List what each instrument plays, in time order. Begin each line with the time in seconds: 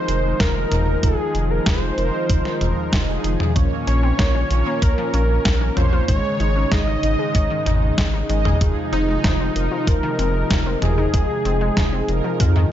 Already playing: analog synth pad D#3 F3 G#3 D#4, analog polysynth F3 D#4 A#4, analog synth lead C5
0.08 analog synth bass F1, closed hi-hat
0.40 analog synth bass F1, analog synth lead A#4, kick, snare, closed hi-hat
0.71 analog synth bass F1, analog polysynth F3 D#4 A#4, closed hi-hat, mid tom
1.03 analog synth bass F1, analog polysynth F3 D#4 G#4, analog synth lead G#4, kick, closed hi-hat
1.35 analog synth bass F1, closed hi-hat
1.51 analog synth lead A#4
1.66 analog synth bass F1, analog synth lead C5, kick, snare, closed hi-hat
1.98 analog synth bass F1, analog polysynth F3 D#4 A#4, closed hi-hat
2.29 analog synth bass F1, kick, closed hi-hat
2.45 snare
2.61 analog synth bass F1, analog polysynth F3 D#4 A#4, closed hi-hat, mid tom
2.93 analog synth bass F1, kick, snare, closed hi-hat
3.08 analog polysynth F3 D#4 G#4
3.24 analog synth bass F1, closed hi-hat
3.40 mid tom
3.56 analog synth bass A#1, analog polysynth A#2 A#3 C#4 C#5, synth arpeggio sound F3, analog synth pad A#3 C#4, kick, closed hi-hat
3.87 analog synth bass A#1, synth arpeggio sound C#4, analog synth lead C#5, closed hi-hat
4.03 synth arpeggio sound C4
4.19 analog synth bass A#1, synth arpeggio sound A#3, kick, snare, closed hi-hat
4.35 synth arpeggio sound C#4
4.50 analog synth bass A#1, analog polysynth A#2 A#3 C#4 C#5, closed hi-hat
4.66 synth arpeggio sound A#3
4.82 analog synth bass A#1, analog synth lead A#4, synth arpeggio sound A#4, kick, closed hi-hat
4.98 synth arpeggio sound F3
5.14 analog synth bass A#1, synth arpeggio sound C#4, closed hi-hat
5.45 analog synth bass A#1, synth arpeggio sound A#3, kick, snare, closed hi-hat
5.61 synth arpeggio sound C#4
5.77 analog synth bass A#1, synth arpeggio sound F3, analog polysynth A#3 C#4 C#5, analog synth lead C5, closed hi-hat, mid tom
5.93 synth arpeggio sound F4
6.08 analog synth bass G#1, analog polysynth G#2 G#3 D#4 C#5, analog synth pad C#3 D#3 G#3 D#4, synth arpeggio sound D#3, analog synth lead C#5, kick, closed hi-hat
6.40 analog synth bass G#1, synth arpeggio sound D#4, closed hi-hat
6.56 synth arpeggio sound C#4
6.71 analog synth bass G#1, synth arpeggio sound G#3, analog synth lead D#5, kick, snare, closed hi-hat
6.87 synth arpeggio sound D#4
7.03 analog synth bass G#1, analog polysynth G#2 G#3 D#4 D#5, closed hi-hat
7.19 synth arpeggio sound G#3
7.35 analog synth bass G#1, synth arpeggio sound C#5, kick, closed hi-hat
7.51 synth arpeggio sound D#3
7.66 analog synth bass G#1, synth arpeggio sound D#4, closed hi-hat, mid tom
7.98 analog synth bass G#1, synth arpeggio sound G#3, kick, snare, closed hi-hat
8.14 synth arpeggio sound D#4
8.29 analog synth bass G#1, synth arpeggio sound D#3, analog polysynth G#3 D#4 D#5, closed hi-hat
8.45 synth arpeggio sound G#4, mid tom
8.61 analog synth bass F1, analog synth pad C3 F3, synth arpeggio sound D#3, analog polysynth F3 D#4 G#4, kick, closed hi-hat
8.93 analog synth bass F1, synth arpeggio sound C4, analog synth lead D#4, closed hi-hat
9.08 synth arpeggio sound G#3
9.24 analog synth bass F1, synth arpeggio sound F3, kick, snare, closed hi-hat
9.40 synth arpeggio sound C4
9.56 analog synth bass F1, analog polysynth F3 D#4 A#4, closed hi-hat
9.72 synth arpeggio sound F3
9.87 analog synth bass F1, synth arpeggio sound F4, analog synth lead A#4, kick, closed hi-hat
10.03 synth arpeggio sound D#3
10.19 analog synth bass F1, synth arpeggio sound C4, closed hi-hat
10.50 analog synth bass F1, synth arpeggio sound F3, kick, snare, closed hi-hat
10.66 synth arpeggio sound C4
10.82 analog synth bass F1, synth arpeggio sound D#3, analog polysynth F3 D#4 A#4, analog synth lead G#4, closed hi-hat, mid tom
10.98 synth arpeggio sound D#4
11.14 analog synth bass F1, synth arpeggio sound D#3, analog polysynth F3 D#4 G#4, kick, closed hi-hat
11.45 analog synth bass F1, synth arpeggio sound C4, closed hi-hat
11.61 synth arpeggio sound G#3
11.77 analog synth bass F1, synth arpeggio sound F3, kick, snare, closed hi-hat
11.93 synth arpeggio sound C4
12.08 analog synth bass F1, analog polysynth F3 D#4 A#4, closed hi-hat
12.24 synth arpeggio sound F3
12.40 analog synth bass F2, synth arpeggio sound F4, kick, closed hi-hat, high tom
12.56 synth arpeggio sound D#3, high tom